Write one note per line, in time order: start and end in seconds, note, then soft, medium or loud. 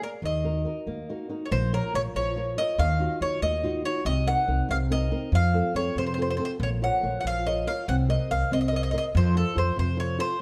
0.02 0.19 G#4 soft
0.02 0.19 A#4 soft
0.02 0.09 A#4 medium
0.02 0.19 D5 soft
0.22 0.64 D#2 medium
0.22 0.64 D#3 medium
0.22 1.06 D#5 medium
0.44 0.64 D#4 soft
0.44 0.65 F#4 soft
0.44 0.65 A#4 soft
0.65 1.00 D#4 soft
0.65 1.00 F#4 soft
0.65 1.00 A#4 soft
0.86 1.01 D#2 medium
0.86 1.29 A#3 soft
1.09 1.28 D#4 soft
1.09 1.29 F#4 soft
1.09 1.29 A#4 soft
1.29 1.47 D#4 soft
1.29 1.47 F#4 soft
1.29 1.47 A#4 soft
1.46 1.51 C#5 soft
1.51 1.79 A#1 loud
1.51 1.93 A#3 medium
1.51 1.72 C5 medium
1.73 1.93 F4 soft
1.73 1.93 A#4 soft
1.73 1.93 A#4 medium
1.73 1.93 C#5 soft
1.94 2.08 A#1 medium
1.94 2.28 F4 soft
1.94 2.28 A#4 soft
1.94 2.28 C#5 soft
1.94 2.01 C#5 medium
2.15 2.56 A#1 medium
2.15 2.57 F3 medium
2.15 2.58 C#5 medium
2.36 2.56 F4 soft
2.36 2.57 A#4 soft
2.36 2.57 C#5 medium
2.58 2.75 F4 soft
2.58 2.75 A#4 soft
2.58 2.75 C#5 soft
2.58 2.78 D#5 medium
2.78 3.06 D#2 loud
2.78 3.20 D#3 medium
2.78 3.19 F5 medium
2.99 3.20 D#4 soft
2.99 3.20 F4 soft
2.99 3.21 F#4 soft
3.21 3.35 D#2 medium
3.21 3.55 D#4 soft
3.21 3.55 F4 soft
3.21 3.56 F#4 soft
3.21 3.41 C#5 medium
3.42 3.83 D#2 medium
3.42 3.83 A#3 medium
3.42 3.82 D#5 medium
3.63 3.84 D#4 medium
3.63 3.84 F4 soft
3.63 3.84 F#4 medium
3.85 4.02 D#4 soft
3.85 4.02 F4 soft
3.85 4.02 F#4 medium
3.85 4.06 C#5 medium
4.05 4.33 C2 loud
4.05 4.46 C3 medium
4.05 4.25 D#5 loud
4.26 4.46 C4 soft
4.26 4.47 D#4 soft
4.26 4.47 A#4 medium
4.26 4.66 F#5 medium
4.47 4.62 C2 medium
4.47 4.81 C4 soft
4.47 4.82 D#4 soft
4.47 4.82 A#4 soft
4.69 5.11 C2 medium
4.69 5.10 C3 medium
4.69 4.76 F5 medium
4.90 5.10 C4 medium
4.90 5.10 D#4 soft
4.90 5.11 A#4 medium
4.90 5.30 D#5 medium
5.11 5.28 C4 soft
5.11 5.28 D#4 soft
5.11 5.29 A#4 medium
5.32 5.60 F2 medium
5.32 5.74 F3 medium
5.32 5.73 F5 loud
5.54 5.73 C4 soft
5.54 5.74 F4 soft
5.54 5.75 A4 soft
5.74 5.88 F2 medium
5.74 6.09 C4 soft
5.74 6.09 F4 soft
5.74 6.10 A4 soft
5.74 5.95 C#5 medium
5.96 6.37 F2 medium
5.96 6.38 C3 medium
5.96 6.04 C5 medium
6.06 6.12 C5 medium
6.14 6.37 C4 soft
6.14 6.20 C5 medium
6.18 6.38 F4 soft
6.18 6.38 A4 medium
6.18 6.28 C5 medium
6.30 6.36 C5 medium
6.37 6.56 C4 soft
6.37 6.56 F4 soft
6.37 6.56 A4 soft
6.37 6.43 C5 medium
6.45 6.51 C5 medium
6.60 6.87 A#1 loud
6.60 7.01 A#3 soft
6.60 6.68 C#5 medium
6.82 7.16 F3 soft
6.82 7.02 A#4 soft
6.82 7.03 C#5 medium
6.82 7.19 F#5 medium
7.03 7.17 A#1 medium
7.03 7.37 F4 soft
7.03 7.37 A#4 soft
7.03 7.38 C#5 soft
7.21 7.65 F3 medium
7.21 7.25 F#5 medium
7.25 7.66 A#1 medium
7.25 7.45 F5 medium
7.46 7.66 F4 soft
7.46 7.66 A#4 soft
7.46 7.67 C#5 medium
7.46 7.66 D#5 medium
7.67 7.84 F4 soft
7.67 7.84 A#4 soft
7.67 7.84 C#5 medium
7.67 7.87 F5 medium
7.88 8.15 C2 loud
7.88 8.29 C4 medium
7.88 7.94 F#5 medium
8.09 8.29 A#4 soft
8.09 8.29 C5 soft
8.09 8.29 D#5 medium
8.09 8.30 D#5 soft
8.30 8.44 C2 medium
8.30 8.64 A#4 soft
8.30 8.64 C5 soft
8.30 8.64 D#5 soft
8.30 8.50 F5 medium
8.51 8.92 C2 medium
8.51 8.92 C4 medium
8.51 8.59 D#5 medium
8.61 8.67 D#5 medium
8.68 8.74 D#5 medium
8.72 8.92 A#4 soft
8.72 8.92 C5 soft
8.72 8.93 D#5 soft
8.76 8.82 D#5 medium
8.83 8.89 D#5 medium
8.91 9.10 A#4 medium
8.91 9.10 C5 soft
8.91 8.97 D#5 medium
8.91 9.10 D#5 soft
8.98 9.04 D#5 medium
9.15 9.42 F2 loud
9.15 9.55 F3 medium
9.15 9.37 C5 medium
9.35 9.54 F4 medium
9.35 9.54 A4 soft
9.35 9.56 A4 medium
9.35 9.55 C5 medium
9.55 9.70 F2 medium
9.55 9.89 F4 soft
9.55 9.90 A4 soft
9.55 9.90 C5 soft
9.55 9.77 C5 medium
9.76 10.19 F2 medium
9.76 10.18 C3 medium
9.76 9.98 C5 medium
9.97 10.17 F4 soft
9.97 10.17 A4 soft
9.97 10.18 C5 medium
9.97 10.19 C#5 medium
10.18 10.36 F4 medium
10.18 10.36 A4 soft
10.18 10.36 C5 medium
10.18 10.39 C5 medium